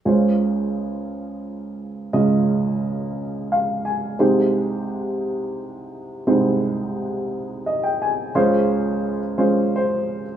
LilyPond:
<<
  \new Staff \with { instrumentName = "Upright piano" } { \time 6/8 \key des \lydian \tempo 4. = 58 << { r2. | r2 f''8 aes''8 | r2. | r2 ees''16 g''16 aes''8 |
r2 c''4 | } \\ { <aes des' f' c''>2. | <aes des' f' ees''>2. | <aes ees' g' c''>2. | <g aes ees' c''>2. |
<aes des' f' c''>4 r8 <aes des' f' c''>4 r8 | } >> }
  \new Staff \with { instrumentName = "Upright piano" } { \clef bass \time 6/8 \key des \lydian <des, des>2. | <des, des>2. | <c, c>2. | <c, c>2. |
<des, des>2. | }
>>